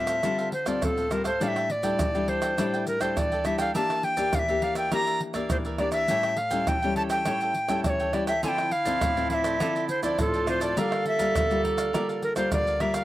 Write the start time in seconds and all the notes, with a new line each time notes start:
Already playing: A2 G3 C4 F4
0.00 E5
0.07 A4 C5 F5, pandeiro, tamborim, maracas
0.23 D3 G3 C4 D4 F4 A4 C5 F5, pandeiro, tamborim, maracas, surdo
0.38 A4 C5 F5, pandeiro, maracas
0.52 C5, muted cavaquinho stroke, pandeiro
0.66 G3 C4 F4 A4 C5 D5 F5, pandeiro, tamborim, maracas, surdo
0.82 A2 A4, pandeiro, tamborim, maracas, surdo
0.97 A4 C5 F5, pandeiro, maracas
1.10 G3 C4 D4 F4 A4 A#4 C5 F5, pandeiro, tamborim, maracas
1.24 A4 C5 F5, pandeiro, tamborim, maracas, surdo
1.40 A2 G3 D4 E4 A4 D5 F5 G5, pandeiro, maracas, surdo
1.48 E5
1.56 A4 D5 G5, pandeiro, tamborim, maracas
1.70 D5, muted cavaquinho stroke, pandeiro
1.83 G3 D4 E4 A4 D5 G5, pandeiro, maracas, surdo
1.99 E3, pandeiro, tamborim, maracas, surdo
2.14 G3 D4 E4 A4 D5 G5, pandeiro, maracas
2.28 D4 A4 C5 D5 G5, pandeiro, surdo
2.42 A4 D5 G5, pandeiro, tamborim, maracas
2.58 A2 G3 D4 E4 A4 D5 G5, pandeiro, tamborim, maracas, surdo
2.74 A4 D5 G5, pandeiro, maracas
2.87 A#4, muted cavaquinho stroke, pandeiro, maracas
3.00 G3 D4 E4 A4 C5 D5 G5, pandeiro, tamborim, maracas, surdo
3.16 E3 D5, pandeiro, tamborim, maracas, surdo
3.32 A4 D5 G5, pandeiro, maracas
3.44 G3 D4 E4 A4 D5 E5 G5, pandeiro, tamborim, maracas
3.58 A4 D5 F5 G5, pandeiro, tamborim, maracas, surdo
3.74 E3 A#3 D4 G4 A#4 D5 E5 A5, pandeiro, maracas, surdo
3.89 A#4 D5 E5, pandeiro, tamborim, maracas
4.03 G5, muted cavaquinho stroke, pandeiro
4.17 A#3 D4 G4 A#4 D5 E5, pandeiro, maracas, surdo
4.33 E3 F5, pandeiro, tamborim, maracas, surdo
4.39 E5
4.48 A#3 D4 G4 A#4 D5 E5, pandeiro, maracas
4.62 G4 A#4 D5 E5 F5, pandeiro, surdo
4.75 A#4 D5 E5 G5, pandeiro, tamborim, maracas
4.91 E3 A#3 D4 G4 A#4 D5 E5 A#5, pandeiro, tamborim, maracas, surdo
5.07 A#4 D5 E5, pandeiro, maracas
5.20 muted cavaquinho stroke, pandeiro
5.34 A#3 D4 G4 A#4 D5 E5, pandeiro, tamborim, maracas, surdo
5.50 E3 C5, pandeiro, tamborim, maracas, surdo
5.65 A#4 D5 E5, pandeiro, maracas
5.78 A#3 D4 G4 A#4 D5 E5, pandeiro, tamborim, surdo
5.92 A#4 D5 E5, pandeiro, tamborim, maracas, surdo
6.08 A2 G3 C#4 E4 G4 A4 C#5 G5, pandeiro, maracas, surdo
6.23 A4 C#5 G5, pandeiro, tamborim, maracas
6.37 F5, muted cavaquinho stroke, pandeiro
6.50 G3 C#4 E4 A4 C#5 G5, pandeiro, maracas, surdo
6.67 E3 G5, pandeiro, tamborim, maracas, surdo
6.82 G3 C#4 E4 A4 C#5 G5, pandeiro, maracas
6.96 G4 A4 C#5 G5 A5, pandeiro, surdo
7.10 A4 C#5 G5, pandeiro, tamborim, maracas
7.25 A2 G3 C#4 E4 G4 A4 C#5 G5, pandeiro, tamborim, maracas, surdo
7.41 A4 C#5 G5, pandeiro, maracas
7.54 muted cavaquinho stroke, pandeiro
7.68 G3 C#4 E4 A4 C#5 G5, pandeiro, tamborim, maracas, surdo
7.84 E3 D5, pandeiro, tamborim, maracas, surdo
7.90 C#5
8.00 A4 C#5 G5, pandeiro, maracas
8.13 G3 C#4 E4 G4 A4 C#5 D5 G5, pandeiro, tamborim
8.27 A4 C#5 E5 G5, pandeiro, tamborim, maracas, surdo
8.43 D3 F3 C4 E4 F4 A4 C5 D5 G#5, pandeiro, maracas, surdo
8.49 G5
8.58 A4 C5 D5, pandeiro, tamborim, maracas
8.71 F5, muted cavaquinho stroke, pandeiro
8.85 F3 C4 E4 A4 C5 D5, pandeiro, maracas, surdo
9.01 A2, pandeiro, tamborim, maracas, surdo
9.16 F3 C4 E4 A4 C5 D5, pandeiro, maracas
9.30 F4 A4 C5 D5 F5, pandeiro, surdo
9.34 E5
9.44 A4 C5 D5, pandeiro, tamborim, maracas
9.60 D3 F3 C4 E4 F4 A4 C5 D5, pandeiro, tamborim, maracas, surdo
9.75 A4 C5 D5, pandeiro, maracas
9.88 C5, muted cavaquinho stroke, pandeiro, maracas
10.03 F3 C4 E4 A4 C5 D5, pandeiro, tamborim, maracas, surdo
10.18 A2 F4 A4, pandeiro, tamborim, maracas, surdo
10.34 A4 C5 D5, pandeiro, maracas
10.47 F3 C4 E4 F4 A4 C5 D5, pandeiro, tamborim, maracas
10.60 A4 C5 D5, pandeiro, tamborim, maracas, surdo
10.76 D3 G3 A#3 F4 G4 A4 A#4 D5 F5, pandeiro, maracas, surdo
10.92 A#4 D5 F5, pandeiro, tamborim, maracas
11.05 E5, muted cavaquinho stroke, pandeiro
11.19 G3 A#3 F4 A#4 D5 F5, pandeiro, maracas, surdo
11.35 D3, pandeiro, tamborim, maracas, surdo
11.50 G3 A#3 F4 A#4 D5 F5, pandeiro, maracas
11.64 G4 A#4 D5 F5, pandeiro, surdo
11.77 A#4 D5 F5, pandeiro, tamborim, maracas
11.93 D3 G3 A#3 F4 G4 A#4 D5 F5, pandeiro, tamborim, maracas, surdo
12.09 A#4 D5 F5, pandeiro, maracas
12.22 A#4, muted cavaquinho stroke, pandeiro
12.36 G3 A#3 F4 A#4 C5 D5 F5, pandeiro, tamborim, maracas, surdo
12.52 D3 D5, pandeiro, tamborim, maracas, surdo
12.67 A#4 D5 F5, pandeiro, maracas
12.80 G3 A#3 F4 G4 A#4 D5 E5 F5, pandeiro, tamborim
12.94 A#4 D5 F5, pandeiro, tamborim, maracas, surdo